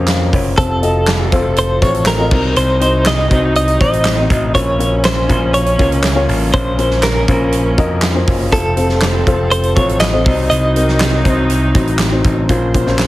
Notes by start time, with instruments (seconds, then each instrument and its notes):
Already playing: picked electric bass F2, upright piano A#2 F3 C#4 F4 A#4 C5 C#5 D#5, string section C#3 A#3
0.07 upright piano C5 F5, snare, clap, closed hi-hat
0.33 picked electric bass F#1, upright piano C#5, kick, open hi-hat
0.57 picked electric bass F1, upright piano C3 C4 F4 A4 C5, string section F3 A4, clean electric guitar A4, kick, closed hi-hat
0.82 upright piano C4 F4 A4 D#5, closed hi-hat
1.07 snare, clap, closed hi-hat
1.32 picked electric bass F1, upright piano C4 F4 A4 C5, kick, closed hi-hat
1.56 clean electric guitar C5, closed hi-hat
1.81 picked electric bass A1, upright piano C4 F4 A4 C5, clean electric guitar C#5, kick, closed hi-hat
1.94 closed hi-hat
2.06 clean electric guitar A#4, snare, clap, closed hi-hat
2.19 upright piano C4 F4 A4 D#5
2.31 picked electric bass C2, upright piano C3 C4 D#4 F#4 C5, string section C3 F#3 D#4, kick, crash
2.56 picked electric bass C2, clean electric guitar C5, closed hi-hat
2.80 upright piano C4 D#4 F#4 D#5, clean electric guitar C5, closed hi-hat
3.05 clean electric guitar D#5, snare, clap, closed hi-hat
3.30 picked electric bass C2, upright piano C4 D#4 F#4 C5, kick, closed hi-hat
3.55 clean electric guitar D#5, closed hi-hat
3.68 closed hi-hat
3.80 picked electric bass A1, upright piano C4 D#4 F#4 C5, clean electric guitar D#5, kick, closed hi-hat
3.93 closed hi-hat
4.05 snare, clap, closed hi-hat
4.17 upright piano C4 D#4 F#4 C5
4.30 picked electric bass A1, kick, closed hi-hat
4.54 picked electric bass A#1, string section C#3 A#3 C#4, upright piano C#4 F4 A#4 C5, clean electric guitar C#5, kick, closed hi-hat
4.78 upright piano C#4 F4 A#4 C#5, closed hi-hat
5.04 clean electric guitar C5, snare, clap, closed hi-hat
5.28 picked electric bass A#1, upright piano C#4 F4 A#4 C5, kick, closed hi-hat
5.54 clean electric guitar C#5, closed hi-hat
5.66 closed hi-hat
5.78 picked electric bass C#2, upright piano C#4 F4 A#4 C#5, kick, closed hi-hat
5.92 closed hi-hat
6.03 snare, clap, closed hi-hat
6.15 upright piano C#4 F4 A#4 C#5
6.29 picked electric bass A1, open hi-hat
6.53 picked electric bass A#1, upright piano C#4 F4 A#4 C#5, string section C#4, clean electric guitar C5, kick, closed hi-hat
6.78 upright piano C#4 F4 A#4 C5, closed hi-hat
6.91 snare
7.03 clean electric guitar A#4, snare, clap, closed hi-hat
7.28 picked electric bass A#1, upright piano C#4 F4 A#4 C5, kick, closed hi-hat
7.52 closed hi-hat
7.78 picked electric bass F2, upright piano C#4 F4 A#4 D#5 A#5, kick, closed hi-hat
8.02 upright piano F5, snare, clap, closed hi-hat
8.15 upright piano C#4 F4 A#4 C5
8.28 picked electric bass F#1, kick, open hi-hat
8.52 picked electric bass F1, upright piano C3 C4 F4 A4 C5, string section F3 C4 A4, clean electric guitar A4, kick, closed hi-hat
8.76 upright piano C4 F4 A4 C5, closed hi-hat
8.89 snare
9.02 snare, clap, closed hi-hat
9.27 picked electric bass F1, upright piano C4 F4 A4 C5, kick, closed hi-hat
9.51 clean electric guitar C5, closed hi-hat
9.63 closed hi-hat
9.76 picked electric bass A1, upright piano C4 F4 A4 C5, clean electric guitar C#5, kick, closed hi-hat
9.89 closed hi-hat
10.00 clean electric guitar D#5, snare, clap, closed hi-hat
10.13 upright piano C4 F4 A4 C5
10.25 picked electric bass C2, upright piano C3 C4 D#4 F#4 C5, string section C3 F#3 D#4, kick, open hi-hat
10.50 picked electric bass C2, clean electric guitar D#5, closed hi-hat
10.75 upright piano C4 D#4 F#4 A#4, closed hi-hat
10.88 snare
11.00 snare, clap, closed hi-hat
11.24 picked electric bass C2, upright piano C4 D#4 F#4 C5, kick, closed hi-hat
11.50 closed hi-hat
11.74 picked electric bass A1, upright piano C4 D#4 F#4 C5, kick, closed hi-hat
11.87 closed hi-hat
11.99 snare, clap, closed hi-hat
12.11 upright piano C4 D#4 F#4 C5
12.24 picked electric bass A1, kick, closed hi-hat
12.49 picked electric bass A#1, upright piano A#2 F3 C#4 F4 A#4 C5, string section C#3 A#3 C5, kick, closed hi-hat
12.74 upright piano C#4 F4 A#4 C5, kick, closed hi-hat
12.86 picked electric bass A#1, upright piano C#4 F4 A#4 C5, snare
12.99 snare, clap, closed hi-hat